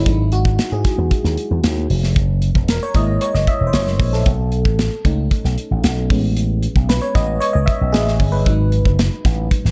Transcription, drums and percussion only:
0.06 kick, closed hi-hat
0.32 closed hi-hat
0.45 kick
0.59 snare, closed hi-hat
0.84 kick, snare, closed hi-hat
1.11 kick, closed hi-hat
1.24 snare
1.37 closed hi-hat
1.64 snare, closed hi-hat
1.90 open hi-hat
2.03 snare
2.16 kick, closed hi-hat
2.42 closed hi-hat
2.55 kick
2.68 snare, closed hi-hat
2.94 kick, closed hi-hat
3.21 closed hi-hat
3.34 snare
3.47 kick, closed hi-hat
3.73 snare, closed hi-hat
3.87 snare
4.00 kick, open hi-hat
4.13 snare
4.26 kick, closed hi-hat
4.52 closed hi-hat
4.65 kick
4.79 snare, closed hi-hat
5.05 kick, closed hi-hat
5.31 kick, closed hi-hat
5.44 snare
5.58 closed hi-hat
5.84 snare, closed hi-hat
6.10 kick, open hi-hat
6.37 closed hi-hat
6.63 closed hi-hat
6.76 kick
6.89 snare, closed hi-hat
7.15 kick, snare, closed hi-hat
7.42 closed hi-hat
7.68 kick, closed hi-hat
7.94 snare, closed hi-hat
8.08 snare
8.20 kick, open hi-hat
8.46 kick, closed hi-hat
8.72 closed hi-hat
8.85 kick
8.99 snare, closed hi-hat
9.25 kick, snare, closed hi-hat
9.51 kick, closed hi-hat
9.65 snare

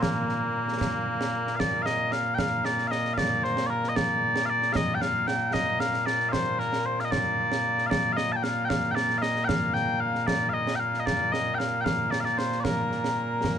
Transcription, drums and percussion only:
0.03 concert bass drum, snare
0.29 snare
0.68 snare
0.81 concert bass drum, snare
1.21 snare
1.47 snare
1.60 concert bass drum, snare
1.86 snare
2.12 snare
2.39 concert bass drum, snare
2.65 snare
2.78 snare
2.92 snare
3.05 snare
3.18 concert bass drum, snare
3.44 snare
3.57 snare
3.84 snare
3.96 concert bass drum, snare
4.36 snare
4.62 snare
4.75 concert bass drum, snare
5.02 snare
5.28 snare
5.54 concert bass drum, snare
5.80 snare
5.94 snare
6.07 snare
6.20 snare
6.33 concert bass drum, snare
6.60 snare
6.73 snare
6.99 snare
7.12 concert bass drum, snare
7.52 snare
7.78 snare
7.91 concert bass drum, snare
8.18 snare
8.44 snare
8.70 concert bass drum, snare
8.97 snare
9.10 snare
9.23 snare
9.36 snare
9.49 concert bass drum, snare
9.76 snare
10.15 snare
10.28 concert bass drum, snare
10.67 snare
10.94 snare
11.07 concert bass drum, snare
11.34 snare
11.60 snare
11.86 concert bass drum, snare
12.12 snare
12.26 snare
12.39 snare
12.52 snare
12.65 concert bass drum, snare
12.92 snare
13.04 snare
13.44 concert bass drum, snare

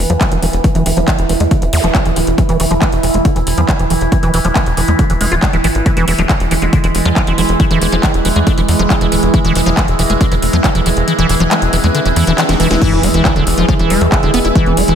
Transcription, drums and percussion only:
0.10 closed hi-hat
0.21 kick, clap, closed hi-hat
0.32 closed hi-hat
0.42 open hi-hat
0.53 closed hi-hat
0.64 kick, closed hi-hat
0.75 closed hi-hat
0.86 open hi-hat
0.97 closed hi-hat
1.08 kick, clap, closed hi-hat
1.19 closed hi-hat
1.29 open hi-hat
1.40 closed hi-hat
1.51 kick, closed hi-hat
1.62 closed hi-hat
1.73 open hi-hat
1.84 closed hi-hat
1.95 kick, clap, closed hi-hat
2.06 closed hi-hat
2.16 open hi-hat
2.27 closed hi-hat
2.38 kick, closed hi-hat
2.49 closed hi-hat
2.60 open hi-hat
2.71 closed hi-hat
2.82 kick, clap, closed hi-hat
2.92 closed hi-hat
3.03 open hi-hat
3.14 closed hi-hat
3.25 kick, closed hi-hat
3.36 closed hi-hat
3.47 open hi-hat
3.58 closed hi-hat
3.69 kick, clap, closed hi-hat
3.79 closed hi-hat
3.90 open hi-hat
4.01 closed hi-hat
4.12 kick, closed hi-hat
4.23 closed hi-hat
4.34 open hi-hat
4.45 closed hi-hat
4.55 kick, clap, closed hi-hat
4.66 closed hi-hat
4.77 open hi-hat
4.88 closed hi-hat
4.99 kick, closed hi-hat
5.10 closed hi-hat
5.21 open hi-hat
5.32 closed hi-hat
5.42 kick, clap, closed hi-hat
5.53 closed hi-hat
5.64 open hi-hat
5.75 closed hi-hat
5.86 kick, closed hi-hat
5.97 closed hi-hat
6.08 open hi-hat
6.19 closed hi-hat
6.29 kick, clap, closed hi-hat
6.40 closed hi-hat
6.51 open hi-hat
6.62 closed hi-hat
6.73 kick, closed hi-hat
6.84 closed hi-hat
6.95 open hi-hat
7.05 closed hi-hat
7.16 kick, clap, closed hi-hat
7.27 closed hi-hat
7.38 open hi-hat
7.49 closed hi-hat
7.60 kick, closed hi-hat
7.71 closed hi-hat
7.82 open hi-hat
7.92 closed hi-hat
8.03 kick, clap, closed hi-hat
8.14 closed hi-hat
8.25 open hi-hat
8.36 closed hi-hat
8.47 kick, closed hi-hat
8.58 closed hi-hat
8.69 open hi-hat
8.79 closed hi-hat
8.90 kick, clap, closed hi-hat
9.01 closed hi-hat
9.12 open hi-hat
9.23 closed hi-hat
9.34 kick, closed hi-hat
9.45 closed hi-hat
9.55 open hi-hat
9.66 closed hi-hat
9.77 kick, clap, closed hi-hat
9.88 closed hi-hat
9.99 open hi-hat
10.10 closed hi-hat
10.21 kick, closed hi-hat
10.32 closed hi-hat
10.42 open hi-hat
10.53 closed hi-hat
10.64 kick, clap, closed hi-hat
10.75 closed hi-hat
10.86 open hi-hat
10.97 closed hi-hat
11.08 closed hi-hat
11.19 closed hi-hat
11.29 open hi-hat
11.40 closed hi-hat
11.51 clap, closed hi-hat
11.62 closed hi-hat
11.73 open hi-hat
11.84 closed hi-hat
11.95 closed hi-hat
12.06 closed hi-hat
12.16 open hi-hat
12.27 closed hi-hat
12.38 snare, clap, closed hi-hat
12.49 snare, closed hi-hat
12.60 open hi-hat
12.71 snare, closed hi-hat
12.82 kick, closed hi-hat, crash
12.93 closed hi-hat
13.03 open hi-hat
13.14 closed hi-hat
13.25 kick, clap, closed hi-hat
13.36 closed hi-hat
13.47 open hi-hat
13.58 closed hi-hat
13.69 kick, closed hi-hat
13.79 closed hi-hat
13.90 open hi-hat
14.01 closed hi-hat
14.12 kick, clap, closed hi-hat
14.23 closed hi-hat
14.34 open hi-hat
14.45 closed hi-hat
14.55 kick, closed hi-hat
14.66 closed hi-hat
14.77 open hi-hat
14.88 closed hi-hat

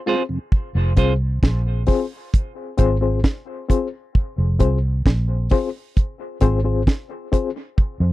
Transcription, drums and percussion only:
0.52 kick
0.97 kick, closed hi-hat
1.43 kick, snare
1.86 kick, open hi-hat
2.34 kick, hi-hat pedal
2.78 kick, closed hi-hat
3.24 kick, snare
3.70 kick, closed hi-hat
4.15 kick
4.60 kick, closed hi-hat
5.06 kick, snare
5.50 kick, open hi-hat
5.97 kick, hi-hat pedal
6.41 kick, closed hi-hat
6.87 kick, snare
7.33 kick, closed hi-hat
7.78 kick

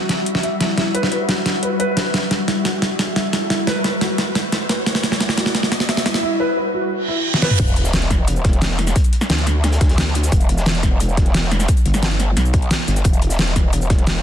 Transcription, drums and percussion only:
0.09 snare, closed hi-hat
0.26 closed hi-hat
0.35 snare
0.43 closed hi-hat
0.61 snare, closed hi-hat
0.78 snare, closed hi-hat
0.95 closed hi-hat
1.03 snare
1.12 closed hi-hat
1.29 snare, closed hi-hat
1.46 snare, closed hi-hat
1.63 closed hi-hat
1.80 closed hi-hat
1.97 snare, closed hi-hat
2.14 snare, closed hi-hat
2.31 snare, closed hi-hat
2.48 snare, closed hi-hat
2.65 snare, closed hi-hat
2.82 snare, closed hi-hat
2.99 snare, closed hi-hat
3.16 snare, closed hi-hat
3.33 snare, closed hi-hat
3.50 snare, closed hi-hat
3.67 snare, closed hi-hat
3.84 snare, closed hi-hat
4.01 snare, closed hi-hat
4.18 snare, closed hi-hat
4.35 snare, closed hi-hat
4.52 snare, closed hi-hat
4.69 snare, closed hi-hat
4.86 snare, closed hi-hat
4.95 snare
5.03 snare, closed hi-hat
5.12 snare
5.21 snare, closed hi-hat
5.29 snare
5.38 snare, closed hi-hat
5.46 snare
5.55 snare, closed hi-hat
5.63 snare
5.72 snare, closed hi-hat
5.80 snare
5.89 snare, closed hi-hat
5.97 snare
6.06 snare, closed hi-hat
6.14 snare
7.34 snare
7.42 snare
7.51 mid tom
7.59 kick, closed hi-hat, crash, shaker
7.68 closed hi-hat, shaker
7.76 closed hi-hat
7.85 snare, shaker
7.93 snare, closed hi-hat, shaker
8.02 snare, closed hi-hat
8.10 kick, snare, closed hi-hat, shaker
8.28 closed hi-hat, shaker
8.36 shaker
8.45 kick, snare, closed hi-hat
8.53 closed hi-hat
8.62 snare, closed hi-hat, shaker
8.70 snare
8.79 snare, closed hi-hat, shaker
8.87 snare, closed hi-hat, shaker
8.96 kick, closed hi-hat, shaker
9.04 closed hi-hat, shaker
9.13 closed hi-hat
9.21 snare, shaker
9.30 snare, closed hi-hat, shaker
9.38 snare, closed hi-hat
9.46 snare, closed hi-hat, shaker
9.64 snare, closed hi-hat, shaker
9.72 snare, closed hi-hat, shaker
9.81 kick, snare, closed hi-hat
9.89 snare, closed hi-hat
9.98 snare, closed hi-hat, shaker
10.07 closed hi-hat
10.15 snare, closed hi-hat, shaker
10.23 snare, closed hi-hat, shaker
10.32 kick, closed hi-hat, shaker
10.41 closed hi-hat, shaker
10.49 closed hi-hat
10.58 snare, shaker
10.66 snare, closed hi-hat, shaker
10.75 snare, closed hi-hat
10.82 kick, snare, closed hi-hat, shaker
11.00 closed hi-hat, shaker
11.09 shaker
11.17 kick, snare, closed hi-hat
11.26 closed hi-hat
11.34 snare, closed hi-hat, shaker
11.43 snare
11.51 snare, closed hi-hat, shaker
11.59 snare, closed hi-hat, shaker
11.68 kick, closed hi-hat, shaker
11.77 closed hi-hat, shaker
11.86 closed hi-hat
11.94 snare, shaker
12.03 snare, closed hi-hat, shaker
12.11 snare, closed hi-hat
12.19 snare, closed hi-hat, shaker
12.37 snare, closed hi-hat, shaker
12.45 shaker
12.53 kick, closed hi-hat
12.62 closed hi-hat
12.71 snare, closed hi-hat, shaker
12.79 closed hi-hat
12.88 snare, closed hi-hat, shaker
12.96 snare, closed hi-hat, shaker
13.04 kick, closed hi-hat, shaker
13.13 closed hi-hat, shaker
13.22 closed hi-hat
13.30 snare, shaker
13.39 snare, closed hi-hat, shaker
13.47 snare, closed hi-hat
13.56 kick, snare, closed hi-hat, shaker
13.73 closed hi-hat, shaker
13.81 shaker
13.90 kick, snare, closed hi-hat
13.99 closed hi-hat
14.07 snare, closed hi-hat, shaker
14.16 snare

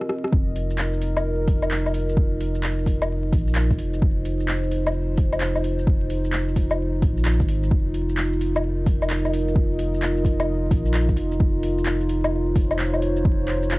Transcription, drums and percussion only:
0.01 cross-stick
0.09 cross-stick
0.24 cross-stick
0.32 kick
0.56 open hi-hat
0.70 shaker
0.78 clap
0.93 shaker
1.02 open hi-hat
1.17 low woodblock, shaker
1.48 kick, open hi-hat
1.62 low woodblock, shaker
1.71 clap
1.86 low woodblock, shaker
1.94 open hi-hat
2.09 shaker
2.17 kick
2.41 open hi-hat
2.55 shaker
2.63 clap
2.79 shaker
2.86 kick, open hi-hat
3.02 low woodblock, shaker
3.33 kick, open hi-hat
3.48 shaker
3.55 clap
3.70 kick, shaker
3.78 open hi-hat
3.93 shaker
4.02 kick
4.25 open hi-hat
4.40 shaker
4.48 clap
4.63 shaker
4.71 open hi-hat
4.87 low woodblock, shaker
5.17 kick, open hi-hat
5.33 low woodblock, shaker
5.40 clap
5.55 low woodblock, shaker
5.64 open hi-hat
5.79 shaker
5.87 kick
6.10 open hi-hat
6.25 shaker
6.33 clap
6.48 shaker
6.56 kick, open hi-hat
6.71 low woodblock, shaker
7.02 kick, open hi-hat
7.17 shaker
7.25 clap
7.40 kick, shaker
7.48 open hi-hat
7.63 shaker
7.71 kick
7.94 open hi-hat
8.09 shaker
8.17 clap
8.32 shaker
8.41 open hi-hat
8.56 low woodblock, shaker
8.86 kick, open hi-hat
9.02 low woodblock, shaker
9.10 clap
9.25 low woodblock, shaker
9.33 open hi-hat
9.48 shaker
9.56 kick
9.79 open hi-hat
9.94 shaker
10.02 clap
10.17 shaker
10.25 kick, open hi-hat
10.40 low woodblock, shaker
10.71 kick, open hi-hat
10.86 shaker
10.94 clap
11.09 kick, shaker
11.17 open hi-hat
11.32 shaker
11.40 kick
11.63 open hi-hat
11.78 shaker
11.86 clap
12.01 shaker
12.09 open hi-hat
12.24 low woodblock, shaker
12.56 kick, open hi-hat
12.71 low woodblock, shaker
12.79 clap
12.94 low woodblock, shaker
13.02 open hi-hat
13.16 shaker
13.25 kick
13.48 clap, open hi-hat
13.63 shaker
13.71 clap

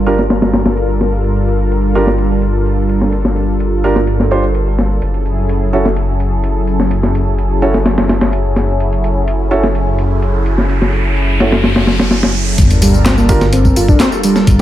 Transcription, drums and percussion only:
0.19 snare
0.30 snare, closed hi-hat, tambourine
0.42 snare, closed hi-hat
0.53 snare, closed hi-hat, tambourine
0.66 snare, closed hi-hat, tambourine
0.77 closed hi-hat, tambourine
0.90 tambourine
1.01 snare, closed hi-hat, tambourine
1.13 tambourine
1.24 closed hi-hat, tambourine
1.37 closed hi-hat, tambourine
1.48 closed hi-hat, tambourine
1.60 tambourine
1.72 closed hi-hat, tambourine
1.84 tambourine
1.95 tambourine
2.07 snare
2.18 closed hi-hat, tambourine
2.31 tambourine
2.42 closed hi-hat, tambourine
2.55 tambourine
2.66 closed hi-hat, tambourine
2.78 tambourine
2.89 closed hi-hat, tambourine
3.02 snare, tambourine
3.13 closed hi-hat, tambourine
3.25 snare, tambourine
3.36 closed hi-hat, tambourine
3.49 tambourine
3.60 closed hi-hat, tambourine
3.73 tambourine
3.84 closed hi-hat, tambourine
3.96 snare, tambourine
4.07 closed hi-hat, tambourine
4.20 snare, tambourine
4.31 closed hi-hat, tambourine
4.44 tambourine
4.55 closed hi-hat, tambourine
4.67 tambourine
4.78 snare, closed hi-hat, tambourine
4.91 tambourine
5.02 closed hi-hat, tambourine
5.14 closed hi-hat, tambourine
5.26 closed hi-hat, tambourine
5.38 tambourine
5.49 closed hi-hat, tambourine
5.62 tambourine
5.73 closed hi-hat, tambourine
5.85 snare, tambourine
5.97 closed hi-hat, tambourine
6.09 tambourine
6.20 closed hi-hat, tambourine
6.32 tambourine
6.44 closed hi-hat, tambourine
6.56 tambourine
6.67 closed hi-hat, tambourine
6.80 snare, tambourine
6.91 closed hi-hat, tambourine
7.03 snare, tambourine
7.15 closed hi-hat, tambourine
7.27 tambourine
7.38 closed hi-hat, tambourine
7.51 tambourine
7.62 closed hi-hat, tambourine
7.74 snare, tambourine
7.86 snare, closed hi-hat, tambourine
7.98 snare, closed hi-hat, tambourine
8.09 snare, closed hi-hat, tambourine
8.21 snare, closed hi-hat, tambourine
8.33 closed hi-hat, tambourine
8.45 tambourine
8.56 snare, closed hi-hat, tambourine
8.69 tambourine
8.80 closed hi-hat, tambourine
8.93 closed hi-hat, tambourine
9.04 closed hi-hat, tambourine
9.16 tambourine
9.27 closed hi-hat, tambourine
9.40 tambourine
9.51 closed hi-hat, tambourine
9.64 snare, tambourine
9.75 closed hi-hat, tambourine
9.87 tambourine
9.99 closed hi-hat, tambourine
10.11 tambourine
10.22 closed hi-hat, tambourine
10.34 tambourine
10.46 closed hi-hat, tambourine
10.58 snare, tambourine
10.69 closed hi-hat, tambourine
10.81 snare, tambourine
10.92 closed hi-hat, tambourine
11.05 tambourine
11.16 closed hi-hat, tambourine
11.29 tambourine
11.40 snare, closed hi-hat, tambourine
11.52 snare, closed hi-hat
11.64 snare, closed hi-hat, tambourine
11.76 snare, closed hi-hat
11.87 snare, closed hi-hat
12.00 snare, closed hi-hat
12.11 snare, closed hi-hat
12.23 snare, closed hi-hat
12.35 closed hi-hat, tambourine
12.47 tambourine
12.58 kick, closed hi-hat, tambourine
12.70 closed hi-hat, tambourine
12.82 closed hi-hat, open hi-hat, tambourine
12.94 tambourine
13.06 snare, clap, closed hi-hat, tambourine
13.18 tambourine
13.29 kick, closed hi-hat, open hi-hat, tambourine
13.41 snare, tambourine
13.53 closed hi-hat, tambourine
13.65 kick, tambourine
13.76 closed hi-hat, open hi-hat, tambourine
13.88 kick, tambourine
14.00 snare, clap, closed hi-hat, tambourine
14.12 tambourine
14.23 closed hi-hat, open hi-hat, tambourine
14.36 snare, tambourine
14.47 kick, closed hi-hat, tambourine

